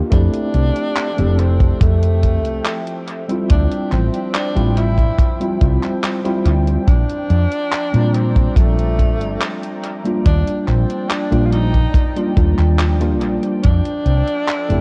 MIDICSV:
0, 0, Header, 1, 6, 480
1, 0, Start_track
1, 0, Key_signature, -1, "major"
1, 0, Tempo, 845070
1, 68, Time_signature, 4, 2, 24, 8
1, 8412, End_track
2, 0, Start_track
2, 0, Title_t, "Analog synth pad"
2, 0, Program_c, 0, 89
2, 68, Note_on_c, 0, 53, 82
2, 69, Note_on_c, 0, 69, 75
2, 69, Note_on_c, 0, 76, 75
2, 69, Note_on_c, 0, 79, 89
2, 1969, Note_off_c, 0, 69, 0
2, 1991, Note_on_c, 0, 72, 74
2, 3885, Note_off_c, 0, 76, 0
2, 3890, Note_off_c, 0, 72, 0
2, 3910, Note_on_c, 0, 74, 72
2, 3910, Note_on_c, 0, 82, 72
2, 5805, Note_off_c, 0, 53, 0
2, 5806, Note_off_c, 0, 79, 0
2, 5810, Note_off_c, 0, 74, 0
2, 5810, Note_off_c, 0, 82, 0
2, 5829, Note_on_c, 0, 53, 77
2, 5829, Note_on_c, 0, 74, 74
2, 5829, Note_on_c, 0, 79, 92
2, 7729, Note_off_c, 0, 74, 0
2, 7748, Note_on_c, 0, 76, 73
2, 7749, Note_on_c, 0, 69, 71
2, 8412, Note_off_c, 0, 53, 0
2, 8412, Note_off_c, 0, 69, 0
2, 8412, Note_off_c, 0, 76, 0
2, 8412, Note_off_c, 0, 79, 0
2, 8412, End_track
3, 0, Start_track
3, 0, Title_t, "Tenor saxophone"
3, 0, Program_c, 1, 66
3, 75, Note_on_c, 1, 62, 127
3, 792, Note_on_c, 1, 60, 99
3, 800, Note_off_c, 1, 62, 0
3, 1028, Note_on_c, 1, 57, 101
3, 1037, Note_off_c, 1, 60, 0
3, 1748, Note_off_c, 1, 57, 0
3, 1992, Note_on_c, 1, 62, 107
3, 2214, Note_off_c, 1, 62, 0
3, 2230, Note_on_c, 1, 60, 95
3, 2452, Note_off_c, 1, 60, 0
3, 2469, Note_on_c, 1, 62, 103
3, 2692, Note_off_c, 1, 62, 0
3, 2710, Note_on_c, 1, 64, 120
3, 3166, Note_off_c, 1, 64, 0
3, 3907, Note_on_c, 1, 62, 127
3, 4626, Note_on_c, 1, 60, 102
3, 4635, Note_off_c, 1, 62, 0
3, 4864, Note_on_c, 1, 57, 102
3, 4873, Note_off_c, 1, 60, 0
3, 5586, Note_off_c, 1, 57, 0
3, 5828, Note_on_c, 1, 62, 115
3, 6024, Note_off_c, 1, 62, 0
3, 6024, Note_on_c, 1, 62, 72
3, 6062, Note_on_c, 1, 60, 95
3, 6071, Note_off_c, 1, 62, 0
3, 6299, Note_on_c, 1, 62, 113
3, 6308, Note_off_c, 1, 60, 0
3, 6507, Note_on_c, 1, 65, 81
3, 6516, Note_off_c, 1, 62, 0
3, 6541, Note_on_c, 1, 63, 116
3, 6550, Note_off_c, 1, 65, 0
3, 7025, Note_off_c, 1, 63, 0
3, 7743, Note_on_c, 1, 62, 127
3, 8412, Note_off_c, 1, 62, 0
3, 8412, End_track
4, 0, Start_track
4, 0, Title_t, "Tine electric piano"
4, 0, Program_c, 2, 4
4, 58, Note_on_c, 2, 57, 97
4, 65, Note_on_c, 2, 60, 95
4, 71, Note_on_c, 2, 64, 89
4, 76, Note_on_c, 2, 67, 106
4, 617, Note_off_c, 2, 57, 0
4, 620, Note_off_c, 2, 60, 0
4, 624, Note_off_c, 2, 64, 0
4, 626, Note_off_c, 2, 67, 0
4, 663, Note_on_c, 2, 57, 75
4, 668, Note_on_c, 2, 60, 70
4, 674, Note_on_c, 2, 64, 67
4, 679, Note_on_c, 2, 67, 86
4, 1838, Note_off_c, 2, 57, 0
4, 1840, Note_off_c, 2, 60, 0
4, 1843, Note_off_c, 2, 64, 0
4, 1846, Note_off_c, 2, 67, 0
4, 1865, Note_on_c, 2, 55, 76
4, 1870, Note_on_c, 2, 60, 69
4, 1877, Note_on_c, 2, 64, 72
4, 1882, Note_on_c, 2, 65, 81
4, 2558, Note_off_c, 2, 55, 0
4, 2561, Note_off_c, 2, 60, 0
4, 2564, Note_off_c, 2, 64, 0
4, 2567, Note_off_c, 2, 65, 0
4, 2584, Note_on_c, 2, 55, 88
4, 2587, Note_on_c, 2, 60, 84
4, 2591, Note_on_c, 2, 64, 86
4, 2593, Note_on_c, 2, 65, 100
4, 2805, Note_off_c, 2, 55, 0
4, 2807, Note_off_c, 2, 60, 0
4, 2809, Note_off_c, 2, 64, 0
4, 2810, Note_off_c, 2, 65, 0
4, 3065, Note_on_c, 2, 55, 84
4, 3070, Note_on_c, 2, 60, 76
4, 3071, Note_on_c, 2, 64, 75
4, 3073, Note_on_c, 2, 65, 91
4, 3157, Note_off_c, 2, 55, 0
4, 3159, Note_off_c, 2, 60, 0
4, 3160, Note_off_c, 2, 64, 0
4, 3161, Note_off_c, 2, 65, 0
4, 3183, Note_on_c, 2, 55, 76
4, 3185, Note_on_c, 2, 60, 69
4, 3188, Note_on_c, 2, 64, 72
4, 3191, Note_on_c, 2, 65, 87
4, 3519, Note_off_c, 2, 55, 0
4, 3520, Note_off_c, 2, 60, 0
4, 3522, Note_off_c, 2, 64, 0
4, 3524, Note_off_c, 2, 65, 0
4, 3547, Note_on_c, 2, 55, 102
4, 3548, Note_on_c, 2, 60, 88
4, 3553, Note_on_c, 2, 64, 89
4, 3555, Note_on_c, 2, 65, 104
4, 3892, Note_off_c, 2, 55, 0
4, 3892, Note_off_c, 2, 60, 0
4, 3894, Note_off_c, 2, 64, 0
4, 3896, Note_off_c, 2, 65, 0
4, 4503, Note_on_c, 2, 55, 80
4, 4508, Note_on_c, 2, 60, 73
4, 4514, Note_on_c, 2, 62, 74
4, 4520, Note_on_c, 2, 65, 84
4, 5678, Note_off_c, 2, 55, 0
4, 5680, Note_off_c, 2, 60, 0
4, 5683, Note_off_c, 2, 62, 0
4, 5686, Note_off_c, 2, 65, 0
4, 5701, Note_on_c, 2, 55, 77
4, 5706, Note_on_c, 2, 58, 70
4, 5711, Note_on_c, 2, 62, 67
4, 5717, Note_on_c, 2, 65, 79
4, 6397, Note_off_c, 2, 55, 0
4, 6399, Note_off_c, 2, 58, 0
4, 6402, Note_off_c, 2, 62, 0
4, 6405, Note_off_c, 2, 65, 0
4, 6423, Note_on_c, 2, 55, 91
4, 6426, Note_on_c, 2, 58, 87
4, 6429, Note_on_c, 2, 62, 84
4, 6433, Note_on_c, 2, 65, 101
4, 6644, Note_off_c, 2, 55, 0
4, 6646, Note_off_c, 2, 58, 0
4, 6647, Note_off_c, 2, 62, 0
4, 6649, Note_off_c, 2, 65, 0
4, 6907, Note_on_c, 2, 55, 85
4, 6909, Note_on_c, 2, 58, 77
4, 6912, Note_on_c, 2, 62, 80
4, 6916, Note_on_c, 2, 65, 89
4, 6998, Note_off_c, 2, 55, 0
4, 6999, Note_off_c, 2, 58, 0
4, 7000, Note_off_c, 2, 62, 0
4, 7002, Note_off_c, 2, 65, 0
4, 7020, Note_on_c, 2, 55, 76
4, 7024, Note_on_c, 2, 58, 69
4, 7027, Note_on_c, 2, 62, 72
4, 7029, Note_on_c, 2, 65, 85
4, 7358, Note_off_c, 2, 55, 0
4, 7360, Note_off_c, 2, 58, 0
4, 7361, Note_off_c, 2, 62, 0
4, 7362, Note_off_c, 2, 65, 0
4, 7385, Note_on_c, 2, 55, 92
4, 7387, Note_on_c, 2, 58, 86
4, 7390, Note_on_c, 2, 62, 86
4, 7394, Note_on_c, 2, 65, 100
4, 7731, Note_off_c, 2, 55, 0
4, 7732, Note_off_c, 2, 58, 0
4, 7733, Note_off_c, 2, 62, 0
4, 7735, Note_off_c, 2, 65, 0
4, 8342, Note_on_c, 2, 57, 76
4, 8347, Note_on_c, 2, 60, 67
4, 8353, Note_on_c, 2, 64, 73
4, 8359, Note_on_c, 2, 67, 83
4, 8412, Note_off_c, 2, 57, 0
4, 8412, Note_off_c, 2, 60, 0
4, 8412, Note_off_c, 2, 64, 0
4, 8412, Note_off_c, 2, 67, 0
4, 8412, End_track
5, 0, Start_track
5, 0, Title_t, "Fretless electric bass"
5, 0, Program_c, 3, 35
5, 68, Note_on_c, 3, 41, 92
5, 156, Note_off_c, 3, 41, 0
5, 308, Note_on_c, 3, 36, 94
5, 396, Note_off_c, 3, 36, 0
5, 673, Note_on_c, 3, 29, 103
5, 975, Note_off_c, 3, 29, 0
5, 1028, Note_on_c, 3, 41, 97
5, 1391, Note_off_c, 3, 41, 0
5, 1391, Note_on_c, 3, 36, 83
5, 1475, Note_off_c, 3, 36, 0
5, 1992, Note_on_c, 3, 38, 95
5, 2078, Note_off_c, 3, 38, 0
5, 2227, Note_on_c, 3, 33, 100
5, 2316, Note_off_c, 3, 33, 0
5, 2589, Note_on_c, 3, 33, 102
5, 2894, Note_off_c, 3, 33, 0
5, 3188, Note_on_c, 3, 36, 101
5, 3276, Note_off_c, 3, 36, 0
5, 3666, Note_on_c, 3, 38, 101
5, 3840, Note_off_c, 3, 38, 0
5, 3906, Note_on_c, 3, 34, 102
5, 3995, Note_off_c, 3, 34, 0
5, 4147, Note_on_c, 3, 41, 99
5, 4236, Note_off_c, 3, 41, 0
5, 4510, Note_on_c, 3, 46, 102
5, 4814, Note_off_c, 3, 46, 0
5, 4864, Note_on_c, 3, 34, 94
5, 5229, Note_off_c, 3, 34, 0
5, 5229, Note_on_c, 3, 31, 78
5, 5314, Note_off_c, 3, 31, 0
5, 5827, Note_on_c, 3, 39, 96
5, 5916, Note_off_c, 3, 39, 0
5, 6065, Note_on_c, 3, 34, 99
5, 6155, Note_off_c, 3, 34, 0
5, 6428, Note_on_c, 3, 34, 101
5, 6733, Note_off_c, 3, 34, 0
5, 7025, Note_on_c, 3, 39, 87
5, 7115, Note_off_c, 3, 39, 0
5, 7147, Note_on_c, 3, 39, 79
5, 7504, Note_off_c, 3, 39, 0
5, 7504, Note_on_c, 3, 34, 91
5, 7594, Note_off_c, 3, 34, 0
5, 7751, Note_on_c, 3, 41, 92
5, 7838, Note_off_c, 3, 41, 0
5, 7984, Note_on_c, 3, 36, 100
5, 8074, Note_off_c, 3, 36, 0
5, 8348, Note_on_c, 3, 29, 103
5, 8412, Note_off_c, 3, 29, 0
5, 8412, End_track
6, 0, Start_track
6, 0, Title_t, "Drums"
6, 67, Note_on_c, 9, 42, 92
6, 68, Note_on_c, 9, 36, 116
6, 124, Note_off_c, 9, 42, 0
6, 125, Note_off_c, 9, 36, 0
6, 191, Note_on_c, 9, 42, 42
6, 248, Note_off_c, 9, 42, 0
6, 307, Note_on_c, 9, 42, 37
6, 364, Note_off_c, 9, 42, 0
6, 431, Note_on_c, 9, 42, 42
6, 488, Note_off_c, 9, 42, 0
6, 548, Note_on_c, 9, 39, 117
6, 548, Note_on_c, 9, 42, 94
6, 604, Note_off_c, 9, 39, 0
6, 604, Note_off_c, 9, 42, 0
6, 672, Note_on_c, 9, 42, 41
6, 729, Note_off_c, 9, 42, 0
6, 789, Note_on_c, 9, 42, 64
6, 846, Note_off_c, 9, 42, 0
6, 910, Note_on_c, 9, 36, 105
6, 912, Note_on_c, 9, 42, 42
6, 967, Note_off_c, 9, 36, 0
6, 969, Note_off_c, 9, 42, 0
6, 1028, Note_on_c, 9, 36, 123
6, 1028, Note_on_c, 9, 42, 96
6, 1084, Note_off_c, 9, 36, 0
6, 1084, Note_off_c, 9, 42, 0
6, 1152, Note_on_c, 9, 42, 40
6, 1208, Note_off_c, 9, 42, 0
6, 1268, Note_on_c, 9, 36, 63
6, 1268, Note_on_c, 9, 42, 71
6, 1325, Note_off_c, 9, 36, 0
6, 1325, Note_off_c, 9, 42, 0
6, 1392, Note_on_c, 9, 42, 45
6, 1448, Note_off_c, 9, 42, 0
6, 1508, Note_on_c, 9, 39, 115
6, 1508, Note_on_c, 9, 42, 94
6, 1564, Note_off_c, 9, 39, 0
6, 1564, Note_off_c, 9, 42, 0
6, 1631, Note_on_c, 9, 42, 41
6, 1688, Note_off_c, 9, 42, 0
6, 1748, Note_on_c, 9, 42, 65
6, 1805, Note_off_c, 9, 42, 0
6, 1872, Note_on_c, 9, 42, 40
6, 1928, Note_off_c, 9, 42, 0
6, 1987, Note_on_c, 9, 42, 99
6, 1991, Note_on_c, 9, 36, 109
6, 2044, Note_off_c, 9, 42, 0
6, 2047, Note_off_c, 9, 36, 0
6, 2111, Note_on_c, 9, 42, 43
6, 2168, Note_off_c, 9, 42, 0
6, 2227, Note_on_c, 9, 39, 37
6, 2227, Note_on_c, 9, 42, 37
6, 2284, Note_off_c, 9, 39, 0
6, 2284, Note_off_c, 9, 42, 0
6, 2350, Note_on_c, 9, 42, 43
6, 2407, Note_off_c, 9, 42, 0
6, 2467, Note_on_c, 9, 39, 126
6, 2467, Note_on_c, 9, 42, 97
6, 2524, Note_off_c, 9, 39, 0
6, 2524, Note_off_c, 9, 42, 0
6, 2592, Note_on_c, 9, 42, 41
6, 2649, Note_off_c, 9, 42, 0
6, 2709, Note_on_c, 9, 42, 66
6, 2765, Note_off_c, 9, 42, 0
6, 2826, Note_on_c, 9, 36, 70
6, 2832, Note_on_c, 9, 42, 39
6, 2883, Note_off_c, 9, 36, 0
6, 2889, Note_off_c, 9, 42, 0
6, 2944, Note_on_c, 9, 36, 120
6, 2948, Note_on_c, 9, 42, 99
6, 3001, Note_off_c, 9, 36, 0
6, 3004, Note_off_c, 9, 42, 0
6, 3072, Note_on_c, 9, 42, 43
6, 3129, Note_off_c, 9, 42, 0
6, 3187, Note_on_c, 9, 42, 69
6, 3188, Note_on_c, 9, 36, 100
6, 3244, Note_off_c, 9, 36, 0
6, 3244, Note_off_c, 9, 42, 0
6, 3312, Note_on_c, 9, 39, 40
6, 3312, Note_on_c, 9, 42, 43
6, 3369, Note_off_c, 9, 39, 0
6, 3369, Note_off_c, 9, 42, 0
6, 3429, Note_on_c, 9, 39, 121
6, 3429, Note_on_c, 9, 42, 93
6, 3486, Note_off_c, 9, 39, 0
6, 3486, Note_off_c, 9, 42, 0
6, 3552, Note_on_c, 9, 42, 43
6, 3608, Note_off_c, 9, 42, 0
6, 3667, Note_on_c, 9, 42, 70
6, 3724, Note_off_c, 9, 42, 0
6, 3791, Note_on_c, 9, 42, 41
6, 3848, Note_off_c, 9, 42, 0
6, 3906, Note_on_c, 9, 36, 127
6, 3907, Note_on_c, 9, 42, 97
6, 3963, Note_off_c, 9, 36, 0
6, 3964, Note_off_c, 9, 42, 0
6, 4031, Note_on_c, 9, 42, 42
6, 4087, Note_off_c, 9, 42, 0
6, 4147, Note_on_c, 9, 42, 35
6, 4204, Note_off_c, 9, 42, 0
6, 4270, Note_on_c, 9, 42, 39
6, 4327, Note_off_c, 9, 42, 0
6, 4387, Note_on_c, 9, 39, 127
6, 4387, Note_on_c, 9, 42, 97
6, 4444, Note_off_c, 9, 39, 0
6, 4444, Note_off_c, 9, 42, 0
6, 4510, Note_on_c, 9, 42, 40
6, 4567, Note_off_c, 9, 42, 0
6, 4626, Note_on_c, 9, 42, 68
6, 4683, Note_off_c, 9, 42, 0
6, 4749, Note_on_c, 9, 36, 105
6, 4751, Note_on_c, 9, 42, 39
6, 4806, Note_off_c, 9, 36, 0
6, 4808, Note_off_c, 9, 42, 0
6, 4863, Note_on_c, 9, 36, 110
6, 4867, Note_on_c, 9, 42, 99
6, 4920, Note_off_c, 9, 36, 0
6, 4924, Note_off_c, 9, 42, 0
6, 4992, Note_on_c, 9, 42, 40
6, 5048, Note_off_c, 9, 42, 0
6, 5106, Note_on_c, 9, 36, 58
6, 5108, Note_on_c, 9, 42, 72
6, 5162, Note_off_c, 9, 36, 0
6, 5164, Note_off_c, 9, 42, 0
6, 5232, Note_on_c, 9, 42, 43
6, 5289, Note_off_c, 9, 42, 0
6, 5347, Note_on_c, 9, 39, 123
6, 5347, Note_on_c, 9, 42, 93
6, 5404, Note_off_c, 9, 39, 0
6, 5404, Note_off_c, 9, 42, 0
6, 5471, Note_on_c, 9, 42, 39
6, 5528, Note_off_c, 9, 42, 0
6, 5587, Note_on_c, 9, 42, 67
6, 5643, Note_off_c, 9, 42, 0
6, 5711, Note_on_c, 9, 42, 39
6, 5767, Note_off_c, 9, 42, 0
6, 5826, Note_on_c, 9, 36, 127
6, 5826, Note_on_c, 9, 42, 90
6, 5883, Note_off_c, 9, 36, 0
6, 5883, Note_off_c, 9, 42, 0
6, 5950, Note_on_c, 9, 42, 41
6, 6007, Note_off_c, 9, 42, 0
6, 6067, Note_on_c, 9, 39, 38
6, 6067, Note_on_c, 9, 42, 35
6, 6124, Note_off_c, 9, 39, 0
6, 6124, Note_off_c, 9, 42, 0
6, 6191, Note_on_c, 9, 42, 39
6, 6247, Note_off_c, 9, 42, 0
6, 6307, Note_on_c, 9, 39, 122
6, 6307, Note_on_c, 9, 42, 90
6, 6364, Note_off_c, 9, 39, 0
6, 6364, Note_off_c, 9, 42, 0
6, 6430, Note_on_c, 9, 42, 39
6, 6487, Note_off_c, 9, 42, 0
6, 6546, Note_on_c, 9, 42, 62
6, 6603, Note_off_c, 9, 42, 0
6, 6669, Note_on_c, 9, 36, 68
6, 6670, Note_on_c, 9, 42, 37
6, 6726, Note_off_c, 9, 36, 0
6, 6727, Note_off_c, 9, 42, 0
6, 6783, Note_on_c, 9, 36, 117
6, 6786, Note_on_c, 9, 42, 94
6, 6839, Note_off_c, 9, 36, 0
6, 6843, Note_off_c, 9, 42, 0
6, 6909, Note_on_c, 9, 42, 41
6, 6966, Note_off_c, 9, 42, 0
6, 7025, Note_on_c, 9, 36, 97
6, 7026, Note_on_c, 9, 42, 66
6, 7082, Note_off_c, 9, 36, 0
6, 7082, Note_off_c, 9, 42, 0
6, 7149, Note_on_c, 9, 39, 38
6, 7149, Note_on_c, 9, 42, 41
6, 7205, Note_off_c, 9, 39, 0
6, 7205, Note_off_c, 9, 42, 0
6, 7265, Note_on_c, 9, 39, 120
6, 7265, Note_on_c, 9, 42, 94
6, 7322, Note_off_c, 9, 39, 0
6, 7322, Note_off_c, 9, 42, 0
6, 7389, Note_on_c, 9, 42, 39
6, 7446, Note_off_c, 9, 42, 0
6, 7505, Note_on_c, 9, 42, 62
6, 7562, Note_off_c, 9, 42, 0
6, 7629, Note_on_c, 9, 42, 38
6, 7686, Note_off_c, 9, 42, 0
6, 7745, Note_on_c, 9, 42, 93
6, 7752, Note_on_c, 9, 36, 122
6, 7802, Note_off_c, 9, 42, 0
6, 7809, Note_off_c, 9, 36, 0
6, 7869, Note_on_c, 9, 42, 39
6, 7926, Note_off_c, 9, 42, 0
6, 7986, Note_on_c, 9, 42, 36
6, 8043, Note_off_c, 9, 42, 0
6, 8109, Note_on_c, 9, 42, 36
6, 8166, Note_off_c, 9, 42, 0
6, 8227, Note_on_c, 9, 39, 120
6, 8227, Note_on_c, 9, 42, 85
6, 8284, Note_off_c, 9, 39, 0
6, 8284, Note_off_c, 9, 42, 0
6, 8350, Note_on_c, 9, 42, 39
6, 8407, Note_off_c, 9, 42, 0
6, 8412, End_track
0, 0, End_of_file